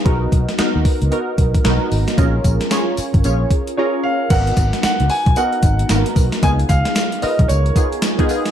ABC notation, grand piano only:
X:1
M:4/4
L:1/8
Q:"Swing 16ths" 1/4=113
K:G#dor
V:1 name="Grand piano"
z8 | z6 c e | f2 f g f4 | g e2 d c3 z |]